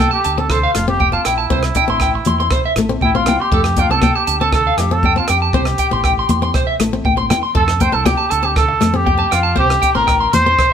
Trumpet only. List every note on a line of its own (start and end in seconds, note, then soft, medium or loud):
0.00 0.12 A4 medium
0.12 0.40 G4 medium
0.39 0.52 A4 medium
0.50 0.73 C5 medium
0.73 0.86 F4 medium
0.88 1.12 G4 medium
1.12 1.26 F4 medium
1.25 2.77 E4 medium
3.03 3.17 E4 medium
3.15 3.42 F4 medium
3.40 3.81 G4 medium
3.80 3.92 F4 medium
3.91 4.17 A4 medium
4.16 4.40 G4 medium
4.41 4.52 A4 medium
4.53 4.79 A4 medium
4.78 4.94 G4 medium
4.92 5.17 A4 medium
5.18 5.29 F4 medium
5.29 6.76 G4 medium
7.56 7.83 A4 loud
7.82 7.95 C5 medium
7.93 8.07 A4 medium
8.06 8.32 G4 medium
8.30 8.46 A4 medium
8.45 8.56 G4 medium
8.57 8.97 A4 medium
8.95 9.34 G4 medium
9.32 9.58 F4 medium
9.58 9.93 G4 medium
9.95 10.30 A#4 medium
10.33 10.73 C5 loud